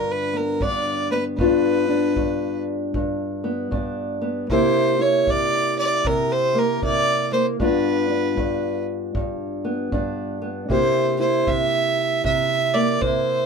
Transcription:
0.00 0.61 G2 medium
0.00 1.38 D3 medium
0.00 0.32 B3 medium
0.00 0.61 D4 medium
0.00 1.36 F4 medium
0.00 0.12 A#4 medium
0.11 0.38 B4 medium
0.34 1.10 B3 medium
0.34 0.63 A#4 medium
0.61 1.38 G2 medium
0.61 1.36 D4 medium
0.61 1.10 D5 medium
0.61 kick medium
1.11 1.36 B3 medium
1.11 1.24 B4 medium
1.38 2.16 G2 medium
1.38 3.43 B3 medium
1.38 1.88 D4 medium
1.38 4.47 F4 medium
1.38 2.61 B4 medium
1.38 kick medium
1.89 3.71 D4 medium
2.16 2.94 G2 medium
2.16 kick medium
2.94 3.70 G2 medium
2.94 kick medium
3.44 4.20 B3 medium
3.71 4.49 G2 medium
3.71 4.46 D4 medium
3.71 kick medium
4.22 4.46 B3 medium
4.50 5.26 C3 medium
4.50 6.53 A#3 medium
4.50 4.98 E4 medium
4.50 7.61 G4 medium
4.50 5.03 C5 loud
4.50 kick medium
4.99 6.82 E4 medium
4.99 5.32 C#5 medium
5.27 6.03 C3 medium
5.27 5.78 D5 loud
5.27 kick medium
5.79 6.08 D5 medium
6.05 6.81 C3 medium
6.05 6.34 A#4 medium
6.05 kick medium
6.32 6.60 C5 medium
6.55 7.31 A#3 medium
6.59 6.84 A#4 medium
6.82 7.56 C3 medium
6.82 7.57 E4 medium
6.82 7.29 D5 loud
6.82 kick medium
7.32 7.57 A#3 medium
7.32 7.46 C5 medium
7.59 8.36 G2 medium
7.59 9.63 B3 medium
7.59 8.08 D4 medium
7.59 10.67 F4 medium
7.59 8.84 B4 medium
7.59 kick medium
8.10 9.91 D4 medium
8.37 9.14 G2 medium
8.37 kick medium
9.15 9.91 G2 medium
9.15 kick medium
9.65 10.40 B3 medium
9.92 10.68 G2 medium
9.92 10.66 D4 medium
9.92 kick medium
10.42 10.66 B3 medium
10.69 11.47 C3 medium
10.69 12.73 A#3 medium
10.69 11.19 E4 medium
10.69 13.46 G4 medium
10.69 11.16 C5 medium
10.69 kick medium
11.19 13.01 E4 medium
11.19 11.49 C5 medium
11.47 12.24 C3 medium
11.47 12.25 E5 loud
11.47 kick medium
12.24 13.00 C3 medium
12.24 12.75 E5 loud
12.24 kick medium
12.74 13.46 A#3 medium
12.74 13.02 D5 medium
13.01 13.46 C3 medium
13.01 13.46 E4 medium
13.01 13.46 C5 medium
13.01 kick medium

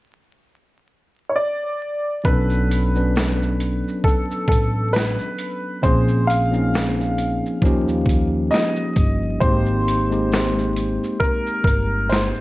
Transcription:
1.29 1.35 C#5 medium
1.36 2.28 D5 medium
2.24 3.80 B1 loud
2.24 2.73 F#3 medium
2.24 2.73 B3 medium
2.24 2.74 C#4 medium
2.24 2.74 D4 medium
2.24 2.75 A4 loud
2.24 4.09 B4 medium
2.24 kick medium
2.24 shaker medium
2.50 shaker soft
2.71 closed hi-hat medium
2.71 shaker soft
2.94 4.23 F#3 medium
2.94 4.23 B3 medium
2.94 4.24 C#4 medium
2.94 4.24 D4 medium
2.94 4.24 B4 medium
2.94 shaker soft
3.16 snare loud
3.16 shaker medium
3.43 shaker soft
3.60 closed hi-hat soft
3.60 shaker soft
3.88 shaker soft
4.04 4.47 A4 medium
4.04 kick medium
4.04 shaker medium
4.31 shaker soft
4.48 5.14 A1 medium
4.48 4.95 A4 medium
4.48 kick medium
4.48 closed hi-hat medium
4.48 shaker soft
4.93 5.85 B4 medium
4.93 snare loud
4.93 shaker medium
5.18 shaker soft
5.38 closed hi-hat medium
5.38 shaker soft
5.82 7.39 A#1 medium
5.82 6.31 F3 medium
5.82 6.32 A#3 medium
5.82 6.32 C4 medium
5.82 6.33 C#4 medium
5.82 6.33 G#4 medium
5.82 6.29 C5 medium
5.82 kick medium
5.82 shaker medium
6.08 shaker soft
6.27 8.58 F5 medium
6.27 closed hi-hat medium
6.27 shaker soft
6.50 7.61 F3 medium
6.50 7.61 A#3 medium
6.50 7.62 C4 medium
6.50 7.62 C#4 medium
6.50 7.63 D#4 medium
6.50 shaker soft
6.74 snare loud
6.74 shaker medium
7.01 shaker soft
7.18 closed hi-hat medium
7.18 shaker soft
7.46 shaker soft
7.62 8.48 D#2 loud
7.62 9.07 F3 loud
7.62 9.07 A#3 medium
7.62 9.08 C#4 medium
7.62 9.08 D#4 medium
7.62 kick medium
7.62 shaker medium
7.66 9.09 G4 medium
7.88 shaker medium
8.06 kick medium
8.06 closed hi-hat medium
8.06 shaker soft
8.51 9.37 D#5 medium
8.51 snare medium
8.51 shaker medium
8.76 shaker medium
8.96 9.37 G1 medium
8.96 kick medium
8.96 closed hi-hat medium
8.96 shaker soft
9.40 10.97 G#1 medium
9.40 9.89 G#3 medium
9.40 9.90 A#3 medium
9.40 9.90 C4 medium
9.40 9.91 D#4 medium
9.40 9.91 G4 loud
9.40 11.25 C5 medium
9.40 kick loud
9.40 shaker medium
9.66 shaker soft
9.88 closed hi-hat medium
9.88 shaker medium
10.10 11.39 G#3 medium
10.10 11.39 A#3 medium
10.10 11.40 C4 medium
10.10 11.40 D#4 medium
10.10 11.40 G4 medium
10.10 shaker soft
10.32 snare loud
10.32 shaker medium
10.58 shaker soft
10.76 closed hi-hat medium
10.76 shaker soft
11.04 shaker soft
11.20 11.62 A#4 medium
11.20 kick medium
11.20 shaker medium
11.47 shaker soft
11.64 12.31 G1 medium
11.64 12.11 A#4 medium
11.64 kick medium
11.64 closed hi-hat medium
11.64 shaker soft
12.09 12.41 C5 medium
12.09 snare medium
12.09 shaker medium
12.34 shaker soft

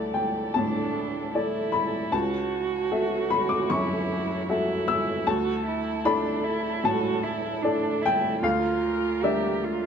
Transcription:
0.00 2.15 D2 soft
0.00 0.51 E4 soft
0.00 5.25 E4 soft
0.00 0.51 A4 soft
0.00 2.13 A4 soft
0.00 0.51 D5 soft
0.00 2.12 D5 soft
0.00 0.11 F#5 medium
0.14 0.51 G5 soft
0.54 1.32 A2 soft
0.54 1.30 D4 soft
0.54 1.69 A5 medium
1.35 2.09 E4 soft
1.35 2.15 E4 soft
1.35 2.09 A4 soft
1.35 2.09 D5 soft
1.72 2.09 B5 medium
2.12 2.89 C#2 soft
2.12 5.27 F#4 soft
2.12 3.72 F#4 medium
2.12 5.28 C#5 soft
2.12 3.26 A5 medium
2.91 3.66 F#4 soft
2.91 3.66 A4 soft
2.91 3.67 E5 soft
3.30 3.49 B5 medium
3.49 3.68 D6 medium
3.70 4.46 F#2 soft
3.70 4.49 E4 medium
3.70 4.83 C#6 medium
4.49 5.29 E4 medium
4.49 5.23 F#4 soft
4.49 5.23 A4 soft
4.49 5.23 E5 soft
4.88 5.24 E6 medium
5.25 6.03 D2 soft
5.25 8.38 E4 soft
5.25 5.66 F#4 medium
5.25 8.42 A4 soft
5.25 6.01 A5 medium
5.67 6.07 E4 medium
6.05 6.45 D4 medium
6.05 6.80 E4 soft
6.05 6.80 A4 soft
6.05 6.81 D5 soft
6.05 6.80 B5 medium
6.44 6.86 E4 medium
6.84 7.61 A2 soft
6.84 7.25 F#4 medium
6.84 7.99 A5 medium
7.23 7.64 E4 medium
7.62 8.04 D4 medium
7.62 8.39 E4 soft
7.62 8.39 A4 soft
7.62 8.39 D5 soft
8.02 8.42 E4 medium
8.02 8.41 G5 medium
8.42 9.21 D2 medium
8.42 9.86 D3 soft
8.42 9.25 F4 medium
8.42 9.86 A#4 medium
8.42 9.19 F5 medium
9.23 9.86 D4 soft
9.23 9.66 G4 medium
9.23 9.86 A#4 soft
9.23 9.86 D5 soft
9.23 9.86 E5 medium
9.64 9.86 F4 medium

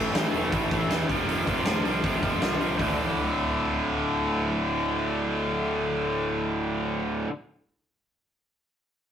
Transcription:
0.00 0.11 A1 medium
0.00 0.14 A2 medium
0.00 0.15 E3 medium
0.00 0.17 A3 medium
0.15 0.30 A1 medium
0.15 0.32 A2 medium
0.15 0.33 E3 medium
0.15 0.34 A3 medium
0.15 snare loud
0.15 open hi-hat medium
0.33 0.49 E1 medium
0.33 0.52 A2 medium
0.33 0.52 E3 medium
0.33 0.54 A3 medium
0.33 open hi-hat medium
0.52 0.68 A1 medium
0.52 0.71 A2 medium
0.52 0.72 E3 loud
0.52 0.73 A3 loud
0.52 kick loud
0.52 open hi-hat medium
0.71 0.87 A1 medium
0.71 0.90 A2 medium
0.71 0.91 E3 medium
0.71 0.92 A3 loud
0.71 kick medium
0.71 open hi-hat medium
0.90 1.06 E2 medium
0.90 1.08 A2 medium
0.90 1.09 E3 medium
0.90 1.11 A3 medium
0.90 snare medium
0.90 open hi-hat medium
1.09 1.25 F1 medium
1.09 1.27 F2 medium
1.09 1.28 C3 loud
1.09 1.29 F3 loud
1.09 kick medium
1.09 open hi-hat medium
1.27 1.43 F1 medium
1.27 1.45 F2 medium
1.27 1.46 C3 loud
1.27 1.46 F3 loud
1.27 open hi-hat medium
1.46 1.63 F1 medium
1.46 1.65 F2 medium
1.46 1.66 C3 medium
1.46 1.66 F3 medium
1.46 kick medium
1.46 open hi-hat medium
1.65 1.81 F1 medium
1.65 1.84 F2 medium
1.65 1.85 C3 medium
1.65 1.86 F3 medium
1.65 snare loud
1.65 open hi-hat medium
1.85 2.00 C2 medium
1.85 2.03 F2 medium
1.85 2.04 C3 medium
1.85 2.05 F3 medium
1.85 open hi-hat medium
2.04 2.19 F1 medium
2.04 2.21 F2 medium
2.04 2.22 C3 loud
2.04 2.22 F3 loud
2.04 kick loud
2.04 open hi-hat medium
2.22 2.39 F1 medium
2.22 2.41 F2 medium
2.22 2.41 C3 medium
2.22 2.42 F3 medium
2.22 kick medium
2.22 open hi-hat medium
2.42 2.57 C2 medium
2.42 2.58 F2 medium
2.42 2.59 C3 medium
2.42 2.60 F3 medium
2.42 snare medium
2.42 open hi-hat medium
2.59 2.76 C2 medium
2.59 2.77 F2 medium
2.59 2.78 C3 medium
2.59 2.78 F3 medium
2.59 open hi-hat medium
2.78 7.25 D1 medium
2.78 7.28 D2 medium
2.78 7.29 A2 medium
2.78 kick medium
2.78 floor tom medium
2.78 open hi-hat medium
2.82 7.32 D3 medium

